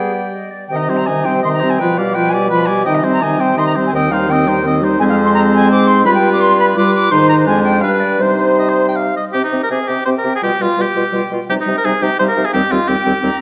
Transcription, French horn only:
0.00 0.52 G3 medium
0.70 0.91 D#3 medium
0.89 1.10 G3 medium
1.09 1.28 D#3 medium
1.27 1.44 G3 medium
1.44 1.64 D#3 medium
1.63 1.80 G3 medium
1.81 2.01 F3 medium
1.99 2.18 G3 medium
2.17 2.36 F3 medium
2.34 2.50 G3 medium
2.51 2.70 F3 medium
2.68 2.86 G3 medium
2.87 3.05 D#3 medium
3.04 3.23 G3 medium
3.22 3.40 D#3 medium
3.39 3.56 G3 medium
3.57 3.78 D#3 medium
3.77 3.92 G3 medium
3.93 4.12 D#3 medium
4.11 4.30 G3 medium
4.28 4.48 D#3 medium
4.47 4.62 G3 medium
4.63 4.83 D#3 medium
4.82 4.98 G3 medium
4.99 6.01 G#3 loud
6.05 6.74 G3 medium
6.77 7.11 G3 medium
7.13 7.48 D#3 medium
7.47 7.84 G#3 medium
7.83 8.19 G3 medium
8.20 9.13 G3 medium
9.34 9.42 C4 medium
9.53 9.61 C4 medium
9.71 9.79 C4 medium
9.89 9.97 C4 medium
10.07 10.15 C4 medium
10.26 10.33 C4 soft
10.42 10.50 G3 medium
10.60 10.68 G3 medium
10.77 10.85 G3 medium
10.94 11.03 G3 medium
11.13 11.21 G3 medium
11.30 11.39 G3 medium
11.49 11.57 G3 medium
11.66 11.74 G3 medium
11.85 11.93 G3 medium
12.02 12.10 G3 medium
12.20 12.28 G3 medium
12.37 12.45 G3 medium
12.54 12.62 G3 medium
12.72 12.80 G3 medium
12.89 12.96 G3 medium
13.06 13.14 G3 medium
13.23 13.31 G3 medium

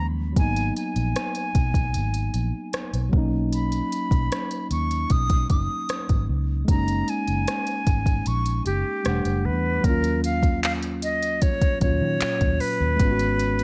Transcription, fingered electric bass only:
0.00 0.38 D#2 medium
0.37 0.70 G#1 medium
0.96 1.13 A#1 medium
1.55 1.96 B1 medium
1.95 2.28 G#1 medium
2.34 2.51 A#1 medium
2.93 3.10 B1 medium
3.13 3.80 B1 loud
4.11 4.28 B1 medium
4.71 5.04 D#2 medium
5.10 5.44 B1 loud
5.50 5.67 F#1 medium
6.10 6.26 G#1 medium
6.29 6.62 C#2 medium
6.68 7.02 F#1 loud
7.28 7.44 F#1 medium
7.87 8.20 G#1 medium
8.27 8.60 A#1 loud
8.66 8.83 F#1 medium
9.06 9.22 E1 loud
9.25 9.47 F#1 medium
9.45 9.78 E2 medium
9.84 11.58 D#2 loud
11.82 11.98 D#2 medium
12.01 12.18 D#3 loud
12.21 muted fingered electric bass stroke soft
12.41 12.58 D#2 medium
12.80 12.97 D#2 medium
13.00 13.64 G#1 loud

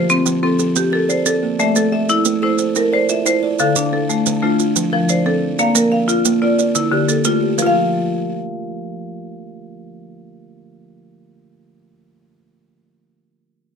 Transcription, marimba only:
0.00 0.26 F4 medium
0.00 0.43 C5 medium
0.10 0.42 C4 medium
0.43 0.76 C4 medium
0.43 0.92 A4 medium
0.77 1.26 G4 medium
0.93 1.25 A4 medium
1.10 1.60 C5 medium
1.26 1.59 A4 medium
1.59 1.93 A3 medium
1.59 1.91 E5 medium
1.76 2.26 A4 medium
1.92 2.43 E5 medium
2.10 2.42 E4 medium
2.43 2.76 E4 medium
2.43 2.92 C5 medium
2.76 3.26 A#4 medium
2.93 3.25 C5 medium
3.10 3.59 E5 medium
3.26 3.59 C5 medium
3.60 3.93 D3 medium
3.60 3.92 A4 medium
3.76 4.26 D4 medium
3.93 4.43 A4 medium
4.10 4.41 A3 medium
4.43 4.59 A3 medium
4.43 4.76 F4 medium
4.93 5.26 F3 medium
5.09 5.59 C5 medium
5.26 5.59 A4 medium
5.59 5.92 A#3 medium
5.59 5.91 F5 medium
5.75 6.25 A#4 medium
5.92 6.42 F5 medium
6.08 6.41 F4 medium
6.42 6.59 F4 medium
6.42 6.75 D5 medium
6.75 7.25 E4 medium
6.92 7.25 D3 medium
7.08 7.58 A4 medium
7.25 7.58 F4 medium
7.58 12.38 F3 medium
7.62 12.43 F4 medium
7.66 12.47 F5 medium

